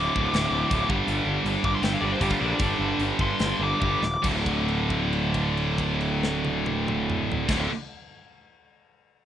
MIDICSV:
0, 0, Header, 1, 6, 480
1, 0, Start_track
1, 0, Tempo, 371517
1, 1397, Time_signature, 4, 2, 24, 8
1, 2361, Tempo, 391901
1, 4281, Tempo, 436364
1, 10721, End_track
2, 0, Start_track
2, 0, Title_t, "Lead electric guitar"
2, 0, Program_c, 0, 29
2, 0, Note_on_c, 0, 86, 88
2, 1134, Note_off_c, 0, 86, 0
2, 2133, Note_on_c, 0, 86, 88
2, 2244, Note_off_c, 0, 86, 0
2, 2264, Note_on_c, 0, 84, 83
2, 2361, Note_on_c, 0, 79, 83
2, 2369, Note_off_c, 0, 84, 0
2, 2473, Note_off_c, 0, 79, 0
2, 2491, Note_on_c, 0, 77, 86
2, 2586, Note_off_c, 0, 77, 0
2, 2591, Note_on_c, 0, 74, 94
2, 2722, Note_off_c, 0, 74, 0
2, 2722, Note_on_c, 0, 72, 76
2, 2829, Note_on_c, 0, 67, 73
2, 2830, Note_off_c, 0, 72, 0
2, 2950, Note_off_c, 0, 67, 0
2, 2950, Note_on_c, 0, 65, 86
2, 3062, Note_off_c, 0, 65, 0
2, 3067, Note_on_c, 0, 62, 85
2, 3296, Note_off_c, 0, 62, 0
2, 3325, Note_on_c, 0, 62, 104
2, 3783, Note_off_c, 0, 62, 0
2, 4060, Note_on_c, 0, 84, 85
2, 4508, Note_off_c, 0, 84, 0
2, 4547, Note_on_c, 0, 86, 93
2, 4980, Note_off_c, 0, 86, 0
2, 4998, Note_on_c, 0, 86, 95
2, 5218, Note_off_c, 0, 86, 0
2, 10721, End_track
3, 0, Start_track
3, 0, Title_t, "Distorted electric guitar"
3, 0, Program_c, 1, 30
3, 0, Note_on_c, 1, 38, 83
3, 0, Note_on_c, 1, 45, 86
3, 0, Note_on_c, 1, 50, 93
3, 190, Note_off_c, 1, 38, 0
3, 193, Note_off_c, 1, 50, 0
3, 201, Note_off_c, 1, 45, 0
3, 208, Note_on_c, 1, 50, 77
3, 233, Note_on_c, 1, 45, 80
3, 253, Note_on_c, 1, 38, 62
3, 907, Note_off_c, 1, 50, 0
3, 912, Note_off_c, 1, 38, 0
3, 919, Note_off_c, 1, 45, 0
3, 928, Note_on_c, 1, 38, 66
3, 947, Note_on_c, 1, 45, 74
3, 969, Note_on_c, 1, 50, 78
3, 1147, Note_off_c, 1, 38, 0
3, 1157, Note_off_c, 1, 45, 0
3, 1161, Note_off_c, 1, 50, 0
3, 1162, Note_on_c, 1, 43, 75
3, 1176, Note_on_c, 1, 50, 93
3, 1206, Note_on_c, 1, 55, 93
3, 1870, Note_off_c, 1, 43, 0
3, 1872, Note_off_c, 1, 50, 0
3, 1876, Note_on_c, 1, 43, 67
3, 1906, Note_on_c, 1, 50, 68
3, 1916, Note_off_c, 1, 55, 0
3, 1921, Note_on_c, 1, 55, 74
3, 2569, Note_off_c, 1, 55, 0
3, 2579, Note_off_c, 1, 43, 0
3, 2583, Note_on_c, 1, 55, 77
3, 2593, Note_off_c, 1, 50, 0
3, 2612, Note_on_c, 1, 50, 74
3, 2629, Note_on_c, 1, 43, 70
3, 3043, Note_off_c, 1, 55, 0
3, 3046, Note_off_c, 1, 43, 0
3, 3058, Note_off_c, 1, 50, 0
3, 3061, Note_on_c, 1, 43, 75
3, 3083, Note_on_c, 1, 50, 82
3, 3102, Note_on_c, 1, 55, 84
3, 3763, Note_off_c, 1, 43, 0
3, 3778, Note_on_c, 1, 43, 60
3, 3781, Note_off_c, 1, 50, 0
3, 3790, Note_off_c, 1, 55, 0
3, 3798, Note_on_c, 1, 50, 65
3, 3813, Note_on_c, 1, 55, 64
3, 4483, Note_off_c, 1, 55, 0
3, 4492, Note_off_c, 1, 43, 0
3, 4496, Note_on_c, 1, 55, 74
3, 4501, Note_off_c, 1, 50, 0
3, 4519, Note_on_c, 1, 50, 74
3, 4535, Note_on_c, 1, 43, 61
3, 4954, Note_off_c, 1, 55, 0
3, 4966, Note_off_c, 1, 50, 0
3, 4974, Note_off_c, 1, 43, 0
3, 5191, Note_on_c, 1, 38, 72
3, 5213, Note_on_c, 1, 45, 90
3, 5232, Note_on_c, 1, 50, 81
3, 8771, Note_off_c, 1, 38, 0
3, 8775, Note_on_c, 1, 38, 85
3, 8787, Note_off_c, 1, 45, 0
3, 8792, Note_on_c, 1, 45, 96
3, 8814, Note_off_c, 1, 50, 0
3, 8818, Note_on_c, 1, 50, 88
3, 8996, Note_off_c, 1, 38, 0
3, 9004, Note_off_c, 1, 45, 0
3, 9017, Note_off_c, 1, 50, 0
3, 10721, End_track
4, 0, Start_track
4, 0, Title_t, "Distorted electric guitar"
4, 0, Program_c, 2, 30
4, 2796, Note_on_c, 2, 43, 69
4, 2819, Note_on_c, 2, 50, 76
4, 2843, Note_on_c, 2, 55, 79
4, 3022, Note_off_c, 2, 43, 0
4, 3045, Note_off_c, 2, 50, 0
4, 3057, Note_off_c, 2, 55, 0
4, 4717, Note_on_c, 2, 43, 62
4, 4737, Note_on_c, 2, 50, 67
4, 4757, Note_on_c, 2, 55, 71
4, 4949, Note_off_c, 2, 43, 0
4, 4959, Note_off_c, 2, 50, 0
4, 4969, Note_off_c, 2, 55, 0
4, 10721, End_track
5, 0, Start_track
5, 0, Title_t, "Picked electric bass"
5, 0, Program_c, 3, 34
5, 206, Note_on_c, 3, 26, 82
5, 350, Note_off_c, 3, 26, 0
5, 433, Note_on_c, 3, 26, 97
5, 581, Note_off_c, 3, 26, 0
5, 656, Note_on_c, 3, 26, 87
5, 809, Note_off_c, 3, 26, 0
5, 916, Note_on_c, 3, 26, 82
5, 1062, Note_off_c, 3, 26, 0
5, 1149, Note_on_c, 3, 31, 84
5, 1298, Note_off_c, 3, 31, 0
5, 1393, Note_on_c, 3, 31, 79
5, 1541, Note_off_c, 3, 31, 0
5, 1624, Note_on_c, 3, 31, 86
5, 1775, Note_off_c, 3, 31, 0
5, 1864, Note_on_c, 3, 31, 80
5, 2016, Note_off_c, 3, 31, 0
5, 2114, Note_on_c, 3, 31, 85
5, 2264, Note_off_c, 3, 31, 0
5, 2357, Note_on_c, 3, 31, 92
5, 2500, Note_off_c, 3, 31, 0
5, 2595, Note_on_c, 3, 31, 86
5, 2737, Note_off_c, 3, 31, 0
5, 2827, Note_on_c, 3, 31, 84
5, 2971, Note_off_c, 3, 31, 0
5, 3076, Note_on_c, 3, 34, 80
5, 3217, Note_off_c, 3, 34, 0
5, 3302, Note_on_c, 3, 31, 86
5, 3449, Note_off_c, 3, 31, 0
5, 3545, Note_on_c, 3, 31, 80
5, 3693, Note_off_c, 3, 31, 0
5, 3786, Note_on_c, 3, 31, 80
5, 3936, Note_off_c, 3, 31, 0
5, 4028, Note_on_c, 3, 31, 79
5, 4182, Note_off_c, 3, 31, 0
5, 4291, Note_on_c, 3, 31, 87
5, 4427, Note_off_c, 3, 31, 0
5, 4502, Note_on_c, 3, 31, 82
5, 4645, Note_off_c, 3, 31, 0
5, 4744, Note_on_c, 3, 31, 79
5, 4886, Note_off_c, 3, 31, 0
5, 4973, Note_on_c, 3, 27, 80
5, 5119, Note_off_c, 3, 27, 0
5, 5207, Note_on_c, 3, 26, 83
5, 8677, Note_off_c, 3, 26, 0
5, 8774, Note_on_c, 3, 26, 79
5, 8980, Note_off_c, 3, 26, 0
5, 10721, End_track
6, 0, Start_track
6, 0, Title_t, "Drums"
6, 204, Note_on_c, 9, 36, 84
6, 333, Note_off_c, 9, 36, 0
6, 437, Note_on_c, 9, 46, 55
6, 448, Note_on_c, 9, 38, 105
6, 567, Note_off_c, 9, 46, 0
6, 577, Note_off_c, 9, 38, 0
6, 919, Note_on_c, 9, 36, 82
6, 921, Note_on_c, 9, 46, 52
6, 1048, Note_off_c, 9, 36, 0
6, 1050, Note_off_c, 9, 46, 0
6, 1159, Note_on_c, 9, 36, 98
6, 1289, Note_off_c, 9, 36, 0
6, 1396, Note_on_c, 9, 46, 50
6, 1525, Note_off_c, 9, 46, 0
6, 1885, Note_on_c, 9, 46, 48
6, 2014, Note_off_c, 9, 46, 0
6, 2121, Note_on_c, 9, 36, 79
6, 2250, Note_off_c, 9, 36, 0
6, 2363, Note_on_c, 9, 46, 55
6, 2373, Note_on_c, 9, 38, 102
6, 2485, Note_off_c, 9, 46, 0
6, 2495, Note_off_c, 9, 38, 0
6, 2831, Note_on_c, 9, 36, 75
6, 2832, Note_on_c, 9, 46, 53
6, 2948, Note_off_c, 9, 36, 0
6, 2948, Note_on_c, 9, 36, 84
6, 2955, Note_off_c, 9, 46, 0
6, 3071, Note_off_c, 9, 36, 0
6, 3296, Note_on_c, 9, 46, 46
6, 3304, Note_on_c, 9, 36, 100
6, 3419, Note_off_c, 9, 46, 0
6, 3426, Note_off_c, 9, 36, 0
6, 3792, Note_on_c, 9, 46, 47
6, 3915, Note_off_c, 9, 46, 0
6, 4032, Note_on_c, 9, 36, 79
6, 4155, Note_off_c, 9, 36, 0
6, 4281, Note_on_c, 9, 46, 50
6, 4289, Note_on_c, 9, 38, 99
6, 4391, Note_off_c, 9, 46, 0
6, 4399, Note_off_c, 9, 38, 0
6, 4745, Note_on_c, 9, 36, 75
6, 4748, Note_on_c, 9, 48, 54
6, 4855, Note_off_c, 9, 36, 0
6, 4858, Note_off_c, 9, 48, 0
6, 4977, Note_on_c, 9, 38, 70
6, 5087, Note_off_c, 9, 38, 0
6, 5208, Note_on_c, 9, 49, 77
6, 5215, Note_on_c, 9, 36, 89
6, 5318, Note_off_c, 9, 49, 0
6, 5325, Note_off_c, 9, 36, 0
6, 5455, Note_on_c, 9, 36, 60
6, 5456, Note_on_c, 9, 49, 45
6, 5565, Note_off_c, 9, 36, 0
6, 5566, Note_off_c, 9, 49, 0
6, 5698, Note_on_c, 9, 57, 38
6, 5808, Note_off_c, 9, 57, 0
6, 5939, Note_on_c, 9, 36, 58
6, 5939, Note_on_c, 9, 49, 39
6, 6049, Note_off_c, 9, 36, 0
6, 6049, Note_off_c, 9, 49, 0
6, 6186, Note_on_c, 9, 57, 41
6, 6296, Note_off_c, 9, 57, 0
6, 6424, Note_on_c, 9, 36, 55
6, 6425, Note_on_c, 9, 49, 45
6, 6534, Note_off_c, 9, 36, 0
6, 6535, Note_off_c, 9, 49, 0
6, 6677, Note_on_c, 9, 57, 45
6, 6787, Note_off_c, 9, 57, 0
6, 6908, Note_on_c, 9, 36, 58
6, 6917, Note_on_c, 9, 49, 44
6, 7018, Note_off_c, 9, 36, 0
6, 7027, Note_off_c, 9, 49, 0
6, 7153, Note_on_c, 9, 57, 45
6, 7263, Note_off_c, 9, 57, 0
6, 7404, Note_on_c, 9, 38, 89
6, 7514, Note_off_c, 9, 38, 0
6, 7637, Note_on_c, 9, 48, 82
6, 7747, Note_off_c, 9, 48, 0
6, 7874, Note_on_c, 9, 48, 78
6, 7984, Note_off_c, 9, 48, 0
6, 8116, Note_on_c, 9, 47, 86
6, 8226, Note_off_c, 9, 47, 0
6, 8353, Note_on_c, 9, 45, 86
6, 8463, Note_off_c, 9, 45, 0
6, 8594, Note_on_c, 9, 43, 91
6, 8704, Note_off_c, 9, 43, 0
6, 8783, Note_on_c, 9, 36, 98
6, 8783, Note_on_c, 9, 49, 86
6, 8792, Note_on_c, 9, 38, 87
6, 8893, Note_off_c, 9, 36, 0
6, 8893, Note_off_c, 9, 49, 0
6, 8902, Note_off_c, 9, 38, 0
6, 10721, End_track
0, 0, End_of_file